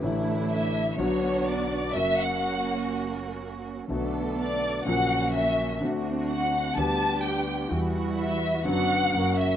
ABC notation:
X:1
M:4/4
L:1/8
Q:1/4=126
K:Bm
V:1 name="Violin section"
z2 e2 c2 d2 | e f3 z4 | z2 d2 f2 e2 | z2 f2 a2 g2 |
z2 e2 f3 e |]
V:2 name="String section"
[A,DE]4 [B,DF]4 | [^A,CF]8 | [B,DA]4 [^A,CF]4 | [=CDF]4 [B,DG]4 |
[G,EF]4 [B,DF]2 [^A,CF]2 |]
V:3 name="Grand piano" clef=bass
[A,,,A,,D,E,A,E]4 [B,,,B,,D,F,B,F]4 | [F,,C,F,^A,F]8 | [B,,,B,,D,A,B,F]4 [^A,,,^A,,C,F,^A,F]4 | [D,,D,A,=CF]4 [D,,D,G,B,G]4 |
[E,,E,G,B,F]4 [F,,D,F,B,F]2 [F,,C,F,^A,F]2 |]
V:4 name="Upright bass" clef=bass
A,,,4 B,,,4 | F,,,8 | B,,,4 ^A,,,4 | D,,4 D,,4 |
E,,4 F,,,2 F,,,2 |]